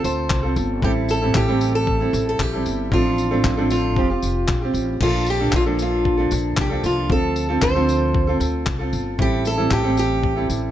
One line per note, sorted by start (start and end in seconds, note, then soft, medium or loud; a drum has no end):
0.00 0.45 C4 soft
0.00 0.43 F4 soft
0.00 0.42 A4 medium
0.04 0.28 D2 medium
0.04 0.53 C5 medium
0.04 tambourine medium
0.30 0.54 C2 medium
0.30 kick loud
0.30 clap loud
0.43 0.82 C4 soft
0.43 0.83 F4 soft
0.43 0.82 A4 medium
0.56 0.81 G1 medium
0.56 tambourine medium
0.82 1.31 A1 loud
0.82 1.21 G3 medium
0.82 1.22 C4 medium
0.82 1.21 E4 medium
0.82 0.91 G4 loud
0.82 1.20 A4 medium
0.82 kick loud
1.09 1.36 A4 loud
1.09 tambourine medium
1.22 1.48 A2 medium
1.22 1.48 E3 medium
1.22 1.48 G3 medium
1.22 1.48 C4 medium
1.22 1.47 E4 medium
1.22 1.47 A4 medium
1.35 2.09 A1 loud
1.35 1.75 G4 loud
1.35 kick loud
1.35 clap loud
1.48 2.01 A2 medium
1.48 2.01 E3 medium
1.48 2.01 G3 medium
1.48 2.01 C4 medium
1.48 1.99 E4 medium
1.48 1.99 A4 medium
1.61 tambourine medium
1.75 2.28 A4 loud
1.87 kick loud
2.00 2.54 G3 soft
2.00 2.54 C4 medium
2.00 2.52 E4 medium
2.00 2.52 A4 medium
2.13 2.37 A1 medium
2.13 tambourine medium
2.29 2.42 A4 medium
2.39 2.63 A#1 medium
2.39 2.93 G4 medium
2.39 kick loud
2.39 clap loud
2.53 2.91 G3 soft
2.53 2.91 C4 medium
2.53 2.92 E4 medium
2.53 2.92 A4 medium
2.66 2.90 G1 medium
2.66 tambourine medium
2.92 3.40 A1 loud
2.92 3.31 F3 medium
2.92 3.30 C4 medium
2.92 3.30 D4 medium
2.92 3.70 F4 medium
2.92 3.30 A4 medium
2.92 kick loud
3.18 tambourine medium
3.31 3.58 A2 medium
3.31 3.57 D3 medium
3.31 3.57 F3 medium
3.31 3.57 C4 medium
3.31 3.56 D4 medium
3.31 3.56 A4 medium
3.44 3.96 A1 loud
3.44 kick loud
3.44 clap loud
3.57 3.97 A2 medium
3.57 3.97 D3 medium
3.57 3.95 F3 medium
3.57 3.97 C4 medium
3.57 3.96 D4 medium
3.57 3.96 A4 medium
3.70 4.71 F4 medium
3.70 tambourine medium
3.96 4.20 F1 medium
3.96 4.09 F3 medium
3.96 4.10 C4 medium
3.96 4.10 F4 medium
3.96 4.08 G4 medium
3.96 kick loud
4.10 4.63 C4 soft
4.10 4.63 F4 medium
4.10 4.61 G4 medium
4.22 4.47 F1 medium
4.22 tambourine medium
4.48 4.72 A#1 medium
4.48 kick loud
4.48 clap loud
4.62 5.01 C4 soft
4.62 5.02 F4 medium
4.62 5.01 G4 medium
4.74 4.98 A1 medium
4.74 tambourine medium
5.01 5.49 A#1 loud
5.01 5.40 F3 medium
5.01 5.40 A#3 medium
5.01 5.39 D4 medium
5.01 5.29 F4 loud
5.01 5.39 A4 medium
5.01 kick loud
5.01 crash loud
5.26 5.53 G4 loud
5.26 tambourine medium
5.40 5.66 A#2 medium
5.40 5.66 D3 medium
5.40 5.66 F3 medium
5.40 5.65 A#3 medium
5.40 5.65 D4 medium
5.40 5.65 A4 medium
5.52 6.27 A#1 loud
5.52 5.63 F4 medium
5.52 kick loud
5.52 clap loud
5.66 6.19 A#2 medium
5.66 7.13 D3 medium
5.66 6.20 F3 medium
5.66 6.18 A#3 medium
5.66 6.18 D4 medium
5.66 6.17 A4 medium
5.79 6.29 F4 medium
5.79 tambourine medium
6.05 kick loud
6.17 6.72 F3 soft
6.17 6.71 A#3 medium
6.17 6.70 D4 medium
6.17 6.69 A4 medium
6.31 6.56 A#1 loud
6.31 tambourine medium
6.57 6.82 C2 medium
6.57 kick loud
6.57 clap loud
6.61 6.85 G4 medium
6.69 7.08 F3 soft
6.69 7.10 A#3 soft
6.69 7.10 D4 medium
6.69 7.09 A4 medium
6.84 7.08 C2 medium
6.84 7.12 F4 medium
6.84 tambourine medium
7.09 7.58 D2 loud
7.09 7.49 F3 medium
7.09 7.49 C4 medium
7.09 7.48 F4 medium
7.09 7.47 A4 medium
7.09 7.62 A4 loud
7.09 kick loud
7.36 tambourine medium
7.49 7.75 D3 medium
7.49 7.75 F3 medium
7.49 7.75 C4 medium
7.49 7.75 F4 medium
7.49 7.74 A4 medium
7.62 8.37 D2 loud
7.62 8.37 C5 loud
7.62 kick loud
7.62 clap loud
7.75 8.28 D3 medium
7.75 8.28 F3 medium
7.75 8.29 C4 medium
7.75 8.28 F4 medium
7.75 8.27 A4 medium
7.89 tambourine medium
8.15 kick loud
8.27 8.81 C4 medium
8.27 8.79 F4 medium
8.27 8.78 A4 medium
8.40 8.64 D2 medium
8.40 tambourine medium
8.66 8.91 C2 medium
8.66 kick loud
8.66 clap loud
8.79 9.18 C4 soft
8.79 9.19 F4 medium
8.79 9.18 A4 medium
8.93 9.17 G1 medium
8.93 tambourine medium
9.18 9.67 A1 loud
9.18 9.58 G3 medium
9.18 9.57 C4 medium
9.18 9.56 E4 medium
9.18 9.47 G4 loud
9.18 9.56 A4 medium
9.18 kick loud
9.45 9.73 A4 loud
9.45 tambourine medium
9.57 9.85 A2 medium
9.57 9.84 E3 medium
9.57 9.84 G3 medium
9.57 9.84 C4 medium
9.57 9.83 E4 medium
9.57 9.82 A4 medium
9.71 10.46 A1 loud
9.71 9.98 G4 medium
9.71 kick loud
9.71 clap loud
9.84 10.37 A2 medium
9.84 10.37 E3 medium
9.84 10.37 G3 medium
9.84 10.38 C4 medium
9.84 10.36 E4 medium
9.84 10.35 A4 medium
9.97 10.47 G4 medium
9.97 tambourine medium
10.24 kick loud
10.36 10.71 G3 soft
10.36 10.71 C4 medium
10.36 10.71 E4 medium
10.36 10.71 A4 medium
10.50 10.71 A1 loud
10.50 tambourine medium